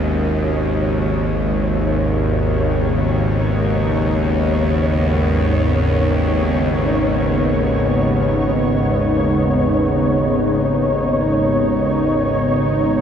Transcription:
Already playing: synth drone G#1 D#2, analog synth pad C#4
0.01 analog synth pad G#2, synth texture C#5
0.29 analog synth pad C#3
0.91 analog synth pad D#4
2.24 analog synth pad B3

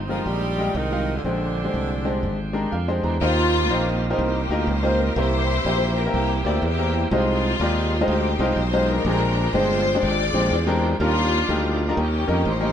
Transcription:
Already playing: fingered electric bass G1, tonewheel organ F3 C4 D#4 G4, string section C4 D#4
0.09 tenor saxophone F3, upright piano G#3 F4 G4 A#4, string section F4
0.26 fingered electric bass A#1, tenor saxophone G3, string section C4 D#4 G4
0.58 upright piano G#3 F4 G4 D#5
0.75 fingered electric bass C2, tenor saxophone D#3, string section G3 G#3 D#4
0.92 upright piano G#3 F4 G4 F5
1.16 tenor saxophone D3, string section D4
1.24 fingered electric bass A#1, upright piano A#2 G#3 D4 G4 C5, tonewheel organ D3 G#3 C4 G4, tenor saxophone D3, string section F3 G#3 D4
1.65 upright piano G#3 D4 G4 C5
1.74 fingered electric bass C2
2.05 upright piano G#3 D4 G4 C5
2.23 fingered electric bass G#1
2.53 upright piano G#3 D4 G4 A#4
2.72 fingered electric bass F2, upright piano F5
2.88 upright piano G#3 D4 G4 C5
3.03 fingered electric bass E2, upright piano A#5
3.21 fingered electric bass D#2, tonewheel organ D#3 F#3 A#3 C4 F4, upright piano D#3 A#3 D#4 F4 G4 C5, string section A#3 C4 F4
3.27 tonewheel organ G3
3.70 fingered electric bass A#1, upright piano A#3 D#4 F4 G4 C5
4.10 upright piano A#3 D#4 F4 G4 C5
4.18 fingered electric bass C2, string section A#3 C4 G4
4.49 fingered electric bass D2, upright piano A#3 D#4 F4 G4 A#4
4.67 fingered electric bass C#2, string section C5
4.83 upright piano A#3 D#4 F4 G4 C5
5.00 string section A#4
5.16 fingered electric bass C2, upright piano C3 A#3 C4 E4 G4 C5, tonewheel organ E3 G3 A#3 C4 G4, string section E4 G4 C5
5.65 fingered electric bass A#1, upright piano A#3 C4 E4 G4 C5
5.97 string section A#4
6.06 upright piano A#3 C4 E4 G4 A#4
6.14 fingered electric bass C2, string section A#3 E4 G4
6.45 fingered electric bass D2, upright piano A#3 C4 E4 G4 D5, string section G4
6.62 fingered electric bass E2, string section A#3 E4 G4
6.79 upright piano A#3 C4 E4 G4 A#4
7.11 fingered electric bass C2, upright piano C3 G#3 D#4 F4 G4 C5, tonewheel organ F3 G3 C4 D#4 G4, string section G#3 F4
7.18 tonewheel organ G#3
7.60 fingered electric bass D#2, upright piano G#3 D#4 F4 G4 D5
8.01 upright piano G#3 D#4 F4 G4 C5
8.08 fingered electric bass D2, string section D#4 G4
8.39 fingered electric bass C2, upright piano G#3 D#4 F4 G4 C5
8.56 fingered electric bass B1, string section C5
8.73 upright piano G#3 D#4 F4 G4 C5
8.89 string section D4 F4 A#4
9.05 fingered electric bass A#1, upright piano A#2 G#3 C4 D4 G4 G#4, tonewheel organ D3 G#3 A#3 C4 G5
9.13 upright piano A#4
9.53 fingered electric bass G1, upright piano G#3 C4 D4 G4 C5, string section F4 G#4 C5
9.95 upright piano G#3 C4 D4 G4 C5
10.03 fingered electric bass G#1, string section F4 G#4 D5
10.33 fingered electric bass A#1, upright piano G#3 C4 D4 G4 C5
10.51 fingered electric bass E2
10.67 upright piano G#3 C4 D4 G4 A#4
11.00 fingered electric bass D#2, upright piano D#3 G3 D4 F4 G4 A#4, tonewheel organ F3 G3 A#3 D4 F4, string section A#3 D4 F4
11.48 fingered electric bass D2, upright piano G3 D4 D#4 F4 G4
11.88 upright piano G3 D4 D#4 F4 A#4
11.97 fingered electric bass D#2, upright piano D#3, tonewheel organ D#3 G3 A#3 C#4 G4, string section A#3 C#4 G4
12.27 fingered electric bass F2, upright piano G3 A#3 C#4 D#4 A#4
12.45 fingered electric bass A1, string section C5
12.60 upright piano G3 A#3 C#4 D#4 A#4

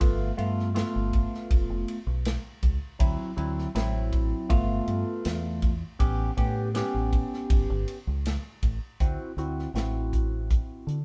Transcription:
0.00 fingered electric bass G1, tine electric piano A3 B3 F4, kick, ride
0.37 fingered electric bass G2, tine electric piano A3 B3 F4, ride
0.59 snare
0.74 tine electric piano A3 B3 F4, snare, ride
0.95 fingered electric bass G1
1.13 kick, ride
1.34 snare
1.50 fingered electric bass F1, kick, ride
1.69 fingered electric bass F1
1.88 ride
2.07 fingered electric bass B1
2.25 snare, ride
2.63 fingered electric bass C#2, kick, ride
2.99 fingered electric bass D2, tine electric piano F#3 C4 E4, kick, ride
3.37 fingered electric bass D2, tine electric piano F#3 C4 E4, ride
3.59 snare
3.75 fingered electric bass A1, tine electric piano F#3 C4 E4, snare, ride
4.12 kick, ride
4.49 fingered electric bass G1, tine electric piano A3 B3 F4, kick, ride
4.87 fingered electric bass G2, ride
5.25 fingered electric bass E2, snare, ride
5.62 kick, ride
5.99 fingered electric bass A1, tine electric piano B3 C#4 G4, kick, ride
6.37 fingered electric bass A2, tine electric piano B3 C#4 G4, kick, ride
6.75 tine electric piano B3 C#4 G4, snare, ride
6.94 fingered electric bass A1
7.13 kick, ride
7.33 snare
7.50 fingered electric bass G1, kick, ride
7.70 fingered electric bass G1
7.88 ride
8.07 fingered electric bass C#2
8.25 snare, ride
8.62 fingered electric bass A1, kick, ride
9.00 fingered electric bass D2, tine electric piano C4 E4 F#4, kick, closed hi-hat
9.37 fingered electric bass D2, tine electric piano C4 E4 F#4, closed hi-hat
9.59 snare
9.74 fingered electric bass A1, tine electric piano C4 E4 F#4, snare, closed hi-hat
10.13 kick, closed hi-hat
10.50 kick, closed hi-hat
10.87 fingered electric bass D3, closed hi-hat

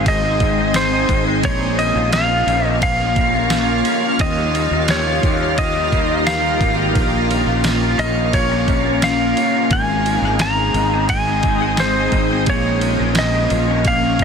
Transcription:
Already playing: fretless electric bass G#1, clean electric guitar G#3 C4 D#4, ambient pad G#3 C4 D#4
0.06 clean electric guitar G#2, electric slide guitar D#5, kick, ride
0.24 clean electric guitar G#3
0.40 clean electric guitar C4, kick, ride
0.58 clean electric guitar D#4
0.74 clean electric guitar G#3, electric slide guitar C5, snare, ride, tambourine
0.92 clean electric guitar D#4
1.09 fretless electric bass G#1, clean electric guitar C4, kick, ride
1.26 clean electric guitar G#3
1.43 fretless electric bass A#1, clean electric guitar A#2, ambient pad A#3 C#4 F4, electric slide guitar C#5, kick, ride
1.60 clean electric guitar A#3
1.77 clean electric guitar C#4, electric slide guitar D#5, ride
1.94 fretless electric bass A#1, clean electric guitar F4
2.12 clean electric guitar A#3, electric slide guitar F5, snare, ride, tambourine
2.29 clean electric guitar F4
2.46 fretless electric bass A#1, clean electric guitar C#4, ride
2.64 clean electric guitar A#3, electric slide guitar D#5
2.81 clean electric guitar A#2, electric slide guitar F5, kick, ride
2.99 clean electric guitar A#3
3.16 clean electric guitar C#4, kick, ride
3.33 clean electric guitar F4
3.50 clean electric guitar A#3, snare, ride, tambourine
3.68 clean electric guitar F4
3.85 clean electric guitar C#4, ride
4.03 clean electric guitar A#3
4.19 fretless electric bass D#2, clean electric guitar D#3, ambient pad D#3 D#4 G4 A#4, electric slide guitar D#5, kick, ride
4.37 clean electric guitar G3
4.54 clean electric guitar A#3, ride
4.71 fretless electric bass D#2, clean electric guitar F4
4.88 clean electric guitar G3, electric slide guitar C#5, snare, ride, tambourine
5.06 clean electric guitar F4
5.23 fretless electric bass D#2, clean electric guitar A#3, kick, ride
5.40 clean electric guitar G3
5.57 clean electric guitar D#3, electric slide guitar D#5, kick, ride
5.75 clean electric guitar G3
5.92 clean electric guitar A#3, kick, ride
6.10 clean electric guitar F4
6.26 clean electric guitar G3, electric slide guitar F5, snare, ride, tambourine
6.44 clean electric guitar F4
6.60 fretless electric bass G#1, clean electric guitar A#3, kick, ride
6.79 clean electric guitar G3
6.95 fretless electric bass A#1, clean electric guitar A#2, ambient pad A#3 C#4, kick, ride
7.13 clean electric guitar A#3
7.30 clean electric guitar C#4, synth texture C#5, ride
7.47 fretless electric bass A#1, clean electric guitar F4
7.64 clean electric guitar A#3, snare, ride, tambourine
7.82 clean electric guitar F4
7.99 fretless electric bass A#1, clean electric guitar C#4, electric slide guitar D#5, ride
8.15 clean electric guitar A#3
8.33 clean electric guitar A#2, electric slide guitar C#5, kick, ride
8.50 clean electric guitar A#3
8.67 clean electric guitar C#4, kick, ride
8.85 clean electric guitar F4
9.02 clean electric guitar A#3, synth texture F5, electric slide guitar F5, snare, ride, tambourine
9.19 clean electric guitar F4
9.37 clean electric guitar C#4, ride
9.54 clean electric guitar A#3
9.71 fretless electric bass G#1, clean electric guitar G#3, ambient pad G#3 C4 D#4, electric slide guitar G#5, kick, ride
9.89 clean electric guitar C4
10.06 clean electric guitar D#4, ride
10.22 fretless electric bass G#1, clean electric guitar G#4
10.39 clean electric guitar C4, electric slide guitar A#5, snare, ride, tambourine
10.58 clean electric guitar G#4
10.74 fretless electric bass G#1, clean electric guitar D#4, ride
10.93 clean electric guitar C4
11.09 clean electric guitar G#3, electric slide guitar G#5, kick, ride
11.27 clean electric guitar C4
11.43 clean electric guitar D#4, kick, ride
11.61 clean electric guitar G#4
11.77 clean electric guitar C4, electric slide guitar C5, snare, ride, tambourine
11.95 clean electric guitar G#4
12.12 fretless electric bass G#1, clean electric guitar D#4, kick, ride
12.30 clean electric guitar C4
12.46 fretless electric bass A#1, ambient pad F3 A#3 C#4, clean electric guitar A#3, electric slide guitar C#5, kick, ride
12.64 clean electric guitar C#4
12.81 clean electric guitar F4, ride
12.99 fretless electric bass A#1, clean electric guitar A#4
13.15 clean electric guitar C#4, electric slide guitar D#5, snare, ride, tambourine
13.33 clean electric guitar A#4
13.50 fretless electric bass A#1, clean electric guitar F4, ride
13.67 clean electric guitar C#4
13.85 clean electric guitar A#3, electric slide guitar F5, kick, ride
14.02 clean electric guitar C#4
14.19 clean electric guitar F4, kick, ride

